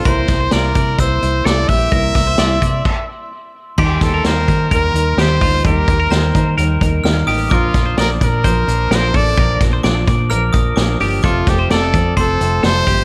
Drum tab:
CC |--------|----x---|x-------|--------|
HH |xxxxxxxo|xxxx----|-xxxxxxo|xxxxxxxo|
SD |-oo---o-|-oo-----|-oo---o-|--o---o-|
BD |oo-oo--o|oo-oo---|oo-oo--o|oo-o-o--|

CC |--------|--------|--------|
HH |xxxxxxxo|xxxxxxxo|xxxxxxxo|
SD |-oo---o-|-oo---o-|-oo---o-|
BD |oo-oo--o|oo-o-o--|oo-oo--o|